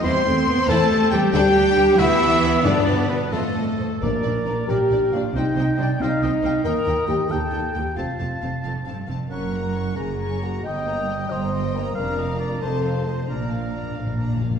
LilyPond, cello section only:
\new Staff \with { instrumentName = "Cello section" } { \clef bass \time 6/8 \key g \major \tempo 4. = 90 c'4. a4 g8 | g4. e4. | d4 b,8 a,4. | \key bes \major bes,8 bes,8 bes,8 bes,8 bes,8 bes,8 |
c8 c8 c8 c8 c8 c8 | ees,8 ees,8 ees,8 ees,8 ees,8 ees,8 | f,8 f,8 f,8 f,8 g,8 f,8 | ges,4. ges,4. |
g,4. g,4. | f,4. f,4. | bes,4. bes,4. | }